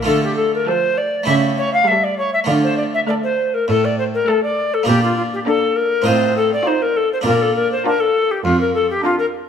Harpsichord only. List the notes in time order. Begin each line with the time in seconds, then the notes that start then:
0.03 A3 F4 A4
0.07 D3
1.23 A3 E4 G4
1.28 C#3
2.44 A3 F4
2.49 D3
3.68 A2
4.83 A#3 D4 F4
4.88 A#2
6.02 C4 D#4 F4
6.06 A2
7.21 D4 F4
7.26 A#2
8.45 F2